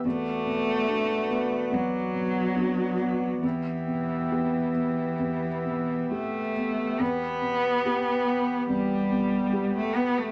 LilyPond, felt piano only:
\new Staff \with { instrumentName = "Felt piano" } { \time 4/4 \key e \minor \tempo 4 = 71 e,8 b,8 <b d' fis'>8 b8 e,8 b,8 <b d' fis'>8 b8 | e,8 b,8 <b e' g'>8 b8 e,8 b,8 <b e' g'>8 b8 | e,8 b,8 <b e' g'>8 b8 e,8 b,8 <b e' g'>8 b8 | }